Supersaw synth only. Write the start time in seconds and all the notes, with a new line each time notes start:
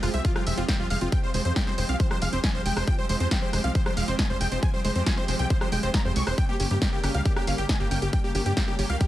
0.03 F4
0.14 E5
0.25 F4
0.36 F4
0.47 E5
0.58 F4
0.69 G5
0.80 F4
0.90 F5
1.02 F4
1.12 G5
1.23 C5
1.34 C5
1.45 C5
1.56 G5
1.67 C5
1.78 C5
1.89 F5
2.00 C5
2.11 C5
2.22 F5
2.33 C5
2.44 G#5
2.55 C5
2.66 G5
2.76 C5
2.88 G5
2.98 C5
3.10 C5
3.20 C5
3.31 G5
3.42 C5
3.53 C5
3.64 F5
3.75 C5
3.86 C5
3.97 F5
4.08 C5
4.19 G#5
4.30 C5
4.41 G5
4.52 C5
4.63 G#5
4.74 C5
4.85 C5
4.96 C5
5.06 G#5
5.17 C5
5.29 C5
5.39 G5
5.50 C5
5.61 C5
5.72 G5
5.83 C5
5.94 A#5
6.05 C5
6.16 C#6
6.27 C5
6.38 G5
6.49 G4
6.60 G4
6.71 G4
6.82 G5
6.93 G4
7.04 G4
7.15 F5
7.26 G4
7.37 G4
7.47 F5
7.58 G4
7.69 G#5
7.80 G4
7.91 G5
8.02 G4
8.13 G5
8.24 G4
8.35 G4
8.46 G4
8.57 G5
8.68 G4
8.79 G4
8.90 F5
9.01 G4